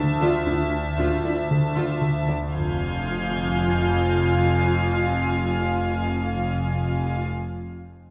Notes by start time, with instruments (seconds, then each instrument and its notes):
Already playing: synth drone D2, analog synth bass D3, violin section E5 A5
0.20 cello section D3, viola section F4
0.46 double bass section D2, cello section D3, analog synth bass D4, viola section E4
0.98 double bass section D2, cello section D3, analog synth bass D4, viola section F4
1.24 cello section D3, viola section E4
1.51 analog synth bass D3
1.75 cello section D3, viola section F4
2.02 analog synth bass D3
2.27 cello section D3, viola section D4
2.52 double bass section F1, cello section F2, synth drone F2, viola section F4, violin section F5 G#5 F6 G6 G#6
4.44 violin section G#6